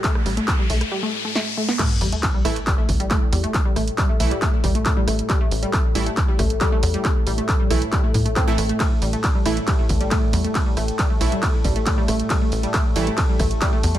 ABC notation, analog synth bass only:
X:1
M:4/4
L:1/8
Q:1/4=137
K:C
V:1 name="Analog synth bass" clef=bass
z A,,, z B,,, z4 | z A,,, z A,,, z A,,, z E,, | z A,,, z B,,, z A,,, z A,,, | z A,,, z A,,, z A,,, z E,, |
z A,,, z B,,, z A,, z A,,, | z A,,, z A,,, z A,,, z E,, | z A,,, z B,,, z A,,, z A,,, | z A,,, z A,,, z A,,, z E,, |]